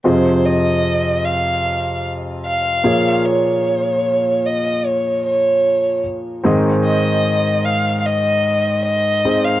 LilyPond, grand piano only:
<<
  \new Staff \with { instrumentName = "Grand piano" } { \time 4/4 \key f \minor \tempo 4 = 75 <c' f' aes' ees''>2.~ <c' f' aes' ees''>8 <bes f' aes' des''>8~ | <bes f' aes' des''>2.~ <bes f' aes' des''>8 r8 | <c' ees' aes' ees''>2.~ <c' ees' aes' ees''>8 <c' ees' aes' ees''>8 | }
  \new Staff \with { instrumentName = "Grand piano" } { \clef bass \time 4/4 \key f \minor <f, c>2.~ <f, c>8 <bes, f>8~ | <bes, f>2.~ <bes, f>8 r8 | <aes, ees>1 | }
>>